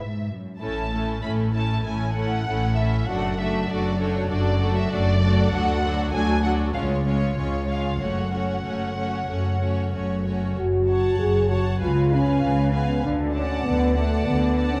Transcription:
Already playing: violin section E5
0.00 cello section G#2, viola section G#3 B3, violin section E4 B4
0.29 cello section F#2
0.59 double bass section A1, cello section A2, viola section A3 C#4, violin section E4 A4 A5
0.91 viola section A3 C#4, violin section E4 A4
1.22 double bass section A1, cello section A2, viola section A3 C#4, violin section E4 A4 B5
1.53 viola section A3 C#4, violin section E4 A4 A5
1.84 double bass section A1, cello section A2, viola section A3 C#4, violin section E4 A4 G#5
2.15 viola section A3 C#4, violin section E4 A4 F#5
2.47 double bass section A1, cello section A2, viola section A3 C#4, violin section E4 A4
2.75 viola section A3 C#4, violin section E4 A4 E5
3.06 double bass section F#1, cello section F#2, viola section A3 D4, violin section F#4 A4 F#5
3.38 viola section A3 D4, violin section F#4 A4 E5
3.69 double bass section F#1, cello section F#2, viola section A3 D4, violin section F#4 A4 D5
4.00 viola section A3 D4, violin section F#4 A4 C#5
4.30 double bass section F#1, cello section F#2, viola section A3 D4, violin section F#4 A4 D5
4.59 viola section A3 D4, violin section F#4 A4
4.77 violin section E5
4.90 double bass section F#1, cello section F#2, viola section A3 D4, violin section F#4 A4 D5
5.22 viola section A3 D4, violin section F#4 A4
5.51 cello section D2, double bass section D2, viola section F#3 D4, violin section F#4 A4 F#5
5.82 viola section F#3 D4, violin section F#4 A4
6.12 cello section D2, double bass section D2, viola section F#3 D4, violin section F#4 A4 G#5
6.43 viola section F#3 D4, violin section F#4 A4 F#5
6.74 cello section C#2, double bass section C#2, viola section G#3 C#4, violin section F4 C#5 F5
7.05 viola section G#3 C#4, violin section F4 C#5
7.36 cello section C#2, double bass section C#2, viola section G#3 C#4, violin section F4 C#5
7.68 viola section G#3 C#4, violin section F4 C#5 F5
8.00 double bass section F#1, cello section F#2, viola section A3 C#4, violin section F#4 C#5 F#5
8.31 viola section A3 C#4, violin section F#4 C#5
8.64 double bass section F#1, cello section F#2, viola section A3 C#4, violin section F#4 C#5
8.96 viola section A3 C#4, violin section F#4 C#5
9.27 double bass section F#1, cello section F#2, viola section A3 C#4, violin section F#4 C#5
9.61 viola section A3 C#4, violin section F#4 C#5
9.93 double bass section F#1, cello section F#2, viola section A3 C#4, violin section F#4 C#5
10.26 viola section A3 C#4, violin section F#4 C#5
10.56 double bass section F#1, cello section F#2, french horn section F#4
10.88 viola section C#5, violin section F#5 A5
11.19 double bass section F#1, cello section F#2, french horn section G#4
11.50 french horn section F#4, viola section C#5, violin section F#5 A5
11.80 double bass section C#2, cello section C#3, french horn section F4, viola section B4, violin section F5 G#5
12.11 french horn section C#4, viola section B4, violin section F5 G#5
12.43 double bass section C#2, cello section C#3
12.73 french horn section B3, viola section B4, violin section F5 G#5
13.04 double bass section D2, cello section D3, french horn section D4
13.33 french horn section C#4, viola section D5, violin section F#5 A5
13.64 double bass section D2, cello section D3, french horn section B3
13.95 french horn section A3, viola section D5, violin section F#5 A5
14.26 double bass section D2, cello section D3, french horn section B3
14.56 viola section D5, violin section F#5 A5
14.73 french horn section C#4

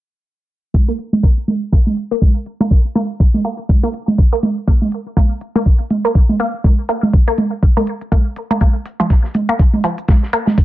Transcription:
0.74 kick, high conga
0.88 synth arpeggio sound A#3
0.99 open hi-hat
1.13 high conga
1.23 synth arpeggio sound A#3, kick
1.48 open hi-hat, high conga
1.72 synth arpeggio sound A#3, kick
1.87 high conga
1.97 open hi-hat
2.11 synth arpeggio sound A#3, open hi-hat
2.22 kick, high conga
2.46 open hi-hat
2.60 synth arpeggio sound A#3, high conga
2.71 kick
2.95 synth arpeggio sound A#3, open hi-hat, high conga
3.20 kick
3.34 high conga
3.45 synth arpeggio sound A#3, open hi-hat
3.69 kick, high conga
3.83 synth arpeggio sound A#3
3.94 open hi-hat
4.08 open hi-hat, high conga
4.18 kick
4.33 synth arpeggio sound A#3
4.43 open hi-hat, high conga
4.67 synth arpeggio sound A#3, kick
4.82 high conga
4.92 open hi-hat
5.17 synth arpeggio sound A#3, kick, high conga
5.41 open hi-hat
5.55 synth arpeggio sound A#3, high conga
5.66 kick
5.90 open hi-hat, high conga
6.05 synth arpeggio sound A#3, open hi-hat
6.15 kick
6.29 high conga
6.40 synth arpeggio sound A#3, open hi-hat
6.64 kick, high conga
6.89 synth arpeggio sound A#3, open hi-hat
7.03 high conga
7.13 kick
7.28 synth arpeggio sound A#3
7.38 open hi-hat, high conga
7.63 kick
7.77 synth arpeggio sound A#3, high conga
7.87 open hi-hat
8.01 open hi-hat
8.12 synth arpeggio sound A#3, kick, high conga
8.36 open hi-hat
8.51 synth arpeggio sound A#3, high conga
8.61 synth arpeggio sound A#3, kick, closed hi-hat, high conga
8.86 closed hi-hat, open hi-hat
9.00 synth arpeggio sound F3, high conga
9.10 kick, snare, closed hi-hat
9.24 snare
9.34 closed hi-hat, open hi-hat, high conga
9.49 synth arpeggio sound A#3
9.59 kick, closed hi-hat
9.73 high conga
9.84 synth arpeggio sound F3, closed hi-hat, open hi-hat
9.98 open hi-hat
10.08 kick, snare, closed hi-hat, high conga
10.23 snare
10.33 synth arpeggio sound A#3, closed hi-hat, open hi-hat
10.47 snare, high conga
10.58 kick, closed hi-hat

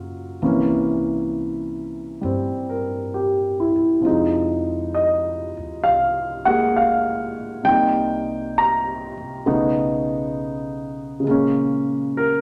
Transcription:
Already playing: upright bass F#2, grand piano C#3 F#3 G#3 A#3 F4 F#4
0.42 upright bass C2, grand piano C3 E3 A#3 C#4
2.21 upright bass G2, grand piano G3 C4
2.69 grand piano A#4
3.14 grand piano G4
3.60 grand piano E4
3.76 upright bass G2
4.00 grand piano C3 F3
4.05 upright bass F2, grand piano G#3 D#4
4.95 grand piano D#5
5.57 upright bass D#2
5.84 upright bass C2, grand piano F5
6.45 grand piano G#3 A#3 G#4 F#5
6.77 grand piano F5
7.38 muted upright bass stroke
7.63 grand piano C3 G3 A#3 G5
7.68 upright bass C2, grand piano D#4
8.58 grand piano A#5
9.17 upright bass C2
9.46 upright bass B1, grand piano C#3 A3 B3 D#4
11.20 grand piano C#3
11.24 upright bass A#1, grand piano G#3 A#3
11.31 grand piano C#4
12.17 grand piano A#4

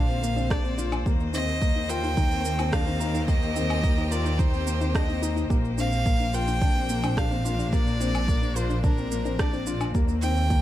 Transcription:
Already playing: double bass section A#1, string quartet A#2 D3 A#3 C5, violin F5
0.09 felt piano C4, shaker
0.22 felt piano A#3, shaker
0.36 felt piano C4, synth arpeggio sound D4, shaker
0.50 felt piano D4, synth arpeggio sound G4, violin D5, kick, cross-stick, shaker
0.64 felt piano C4, synth arpeggio sound D4, shaker
0.78 synth arpeggio sound D4, felt piano F4, shaker
0.92 synth arpeggio sound D4, low woodblock, shaker
1.06 double bass section D#2, string quartet D#3, felt piano A#3, synth arpeggio sound G4, kick, shaker
1.20 shaker
1.34 felt piano C4, synth arpeggio sound D#4, violin D#5, shaker
1.48 shaker
1.61 felt piano A#3, kick, shaker
1.76 synth arpeggio sound D#4, shaker
1.89 felt piano F4, synth arpeggio sound A#4, violin G5, shaker
2.03 synth arpeggio sound D#4, shaker
2.17 synth arpeggio sound D#3, felt piano D#4, kick, shaker
2.25 string quartet G4
2.31 felt piano C4, shaker
2.44 felt piano A#3, shaker
2.58 felt piano C4, synth arpeggio sound D#4, low woodblock, shaker
2.72 felt piano D4, synth arpeggio sound G4, violin F5, kick, cross-stick, shaker
2.86 felt piano C4, synth arpeggio sound D#4, shaker
3.00 felt piano D#4, synth arpeggio sound D#4, shaker
3.14 synth arpeggio sound D#4, shaker
3.28 felt piano A#3, synth arpeggio sound G4, violin D#5, kick, shaker
3.42 shaker
3.55 felt piano C4, synth arpeggio sound D#4, shaker
3.70 low woodblock, shaker
3.83 felt piano A#3, kick, shaker
3.98 synth arpeggio sound D#4, shaker
4.11 felt piano F4, synth arpeggio sound A#4, violin D5, shaker
4.25 synth arpeggio sound D#4, shaker
4.39 synth arpeggio sound D#3, felt piano D#4, violin C5, kick, shaker
4.53 felt piano C4, shaker
4.66 felt piano A#3, shaker
4.81 felt piano C4, synth arpeggio sound D#4, shaker
4.94 felt piano D4, synth arpeggio sound G4, violin D#5, kick, cross-stick, shaker
5.08 felt piano C4, synth arpeggio sound D#4, shaker
5.22 felt piano D#4, synth arpeggio sound D#4, shaker
5.36 synth arpeggio sound D#4, shaker
5.50 double bass section A#1, string quartet A#2, felt piano A#3, synth arpeggio sound G4, kick, shaker
5.65 shaker
5.78 felt piano C4, synth arpeggio sound D4, violin F5, shaker
5.92 shaker
6.06 felt piano A#3, kick, shaker
6.20 synth arpeggio sound D4, shaker
6.33 felt piano F4, synth arpeggio sound A#4, violin G5, shaker
6.40 string quartet D4
6.48 synth arpeggio sound D4, shaker
6.62 synth arpeggio sound D3, felt piano D4, kick, shaker
6.75 felt piano C4, shaker
6.89 felt piano A#3, shaker
7.03 felt piano C4, synth arpeggio sound D4, low woodblock, shaker
7.17 felt piano D4, synth arpeggio sound G4, violin F5, kick, cross-stick, shaker
7.31 felt piano C4, synth arpeggio sound D4, shaker
7.45 synth arpeggio sound D4, felt piano F4, shaker
7.59 synth arpeggio sound D4, shaker
7.72 felt piano A#3, synth arpeggio sound G4, violin D5, kick, shaker
7.87 shaker
8.00 felt piano C4, synth arpeggio sound D4, shaker
8.15 low woodblock, shaker
8.28 felt piano A#3, kick, shaker
8.42 synth arpeggio sound D4, shaker
8.55 felt piano F4, synth arpeggio sound A#4, violin C5, shaker
8.70 synth arpeggio sound D4, shaker
8.83 synth arpeggio sound D3, felt piano D4, violin A#4, kick, shaker
8.97 felt piano C4, shaker
9.11 felt piano A#3, shaker
9.25 felt piano C4, synth arpeggio sound D4, shaker
9.39 felt piano D4, synth arpeggio sound G4, violin D5, kick, cross-stick, shaker
9.53 felt piano C4, synth arpeggio sound D4, shaker
9.67 synth arpeggio sound D4, felt piano F4, shaker
9.81 synth arpeggio sound D4, low woodblock, shaker
9.94 double bass section D#2, string quartet D#3, felt piano A#3, synth arpeggio sound G4, kick, shaker
10.08 shaker
10.22 felt piano C4, synth arpeggio sound D#4, violin G5, shaker
10.37 shaker
10.50 synth arpeggio sound D#3, felt piano A#3, kick, shaker

